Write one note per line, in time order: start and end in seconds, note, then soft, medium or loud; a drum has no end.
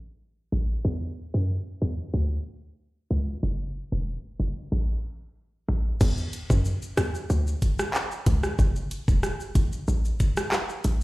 0.52 0.77 A1 medium
0.85 1.23 E2 loud
1.34 1.59 F#2 medium
1.82 1.95 E2 medium
2.14 2.39 D2 loud
3.11 3.36 C#2 medium
3.43 3.81 F#1 loud
3.92 4.17 E1 medium
4.40 4.53 F#1 medium
4.72 4.97 A1 loud
5.69 5.94 A1 medium
6.01 6.39 E2 loud
6.01 kick loud
6.01 crash loud
6.01 shaker medium
6.18 shaker medium
6.33 closed hi-hat medium
6.33 shaker medium
6.50 6.75 F#2 medium
6.50 kick loud
6.50 shaker medium
6.65 shaker medium
6.82 shaker medium
6.97 7.11 E2 medium
6.97 cross-stick loud
6.97 closed hi-hat medium
6.97 shaker medium
7.15 shaker medium
7.30 7.55 D2 loud
7.30 shaker medium
7.47 shaker medium
7.62 kick medium
7.62 closed hi-hat medium
7.62 shaker medium
7.79 cross-stick loud
7.79 shaker medium
7.94 clap medium
7.94 shaker medium
8.11 shaker medium
8.26 8.52 C#2 medium
8.26 kick loud
8.26 closed hi-hat medium
8.26 shaker medium
8.43 cross-stick medium
8.43 shaker medium
8.59 8.97 F#1 loud
8.59 kick loud
8.59 shaker medium
8.76 shaker medium
8.91 closed hi-hat medium
8.91 shaker soft
9.08 9.33 E1 medium
9.08 kick loud
9.08 shaker medium
9.23 cross-stick medium
9.23 shaker medium
9.40 shaker medium
9.55 9.69 F#1 medium
9.55 kick loud
9.55 closed hi-hat medium
9.55 shaker medium
9.73 shaker medium
9.88 10.13 A1 loud
9.88 shaker medium
10.05 shaker medium
10.20 kick medium
10.20 closed hi-hat medium
10.20 shaker medium
10.37 cross-stick loud
10.37 shaker medium
10.52 cross-stick medium
10.52 clap medium
10.52 shaker medium
10.69 shaker medium
10.84 11.03 A1 medium
10.84 closed hi-hat medium
10.84 shaker medium